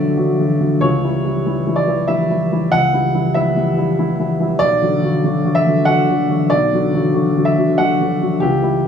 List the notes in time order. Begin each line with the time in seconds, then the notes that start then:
Already playing: B1 D3 F#3 F#4 D5 E5
0.17 D3 F#3 F#4
0.39 D3 F#3 F#4
0.61 D3 F#3 F#4
0.81 C#2 C#5
1.04 E3 G3 E4
1.24 E3 G3 E4
1.46 E3 G3 E4
1.67 E3 G3 E4
1.76 D5
1.87 E3 G3 E4
2.08 E3 G3 E4 E5
2.30 E3 G3 E4
2.52 E3 G3 E4
2.72 C#2 F#5
2.93 E3 G3 E4
3.14 E3 G3 E4
3.34 E3 G3 E4 E5
3.56 E3 G3 E4
3.77 E3 G3 E4
3.99 E3 G3 E4
4.19 E3 G3 E4
4.40 E3 G3 E4
4.59 B1 D5
4.81 D3 F#3 F#4
5.02 D3 F#3 F#4
5.24 D3 F#3 F#4
5.45 D3 F#3 F#4
5.55 E5
5.66 D3 F#3 F#4
5.85 D3 F#3 F#4 F#5
6.09 D3 F#3 F#4
6.29 D3 F#3 F#4
6.50 B1 D5
6.72 D3 F#3 F#4
6.94 D3 F#3 F#4
7.14 D3 F#3 F#4
7.37 D3 F#3 F#4
7.45 E5
7.57 D3 F#3 F#4
7.78 D3 F#3 F#4 F#5
8.01 D3 F#3 F#4
8.21 D3 F#3 F#4
8.40 C#2 G4
8.62 E3 G3 E4